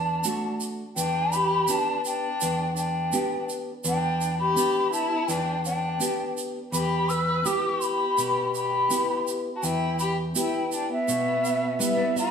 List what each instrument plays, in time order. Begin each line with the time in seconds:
Already playing: nylon-string guitar E2, violin D4, quena A5
0.24 nylon-string guitar A3 D4 F#4, shaker
0.60 shaker
0.96 nylon-string guitar E2, violin D4, quena G5, shaker
1.32 violin G4, quena B5, shaker
1.68 nylon-string guitar B3 D4 G4, violin D4, quena A5, shaker
2.05 violin D4, quena G5, shaker
2.41 nylon-string guitar E2, shaker
2.77 violin D4, quena G5, shaker
3.12 nylon-string guitar B3 D4 G4, shaker
3.49 shaker
3.84 nylon-string guitar E2, violin D4, quena G5, shaker
4.21 shaker
4.40 violin G4, quena B5
4.56 nylon-string guitar B3 D4 G4, shaker
4.93 violin E4, quena A5, shaker
5.28 nylon-string guitar E2, violin D4, quena G5, shaker
5.65 violin D4, quena G5, shaker
6.00 nylon-string guitar B3 D4 G4, shaker
6.37 shaker
6.72 nylon-string guitar E2, violin G4, quena B5, shaker
7.09 violin B4, quena E6, shaker
7.45 nylon-string guitar B3 E4 G4, violin G4, quena D6, shaker
7.81 violin G4, quena B5, shaker
8.18 nylon-string guitar B2, shaker
8.55 violin G4, quena B5, shaker
8.90 nylon-string guitar B3 E4 G4, shaker
9.27 shaker
9.56 violin F#4, quena A5
9.63 nylon-string guitar E2, violin E4, quena G5, shaker
9.99 violin G4, quena B5, shaker
10.35 nylon-string guitar B3 E4 G4, violin E4, quena G5, shaker
10.72 violin D4, quena G5, shaker
10.92 violin B3, quena E5
11.08 nylon-string guitar B2, shaker
11.45 shaker
11.79 nylon-string guitar G3 B3 E4 B4, violin B3, shaker
11.83 quena E5
11.97 nylon-string guitar D5
12.16 violin F#4, nylon-string guitar E5, quena B5, shaker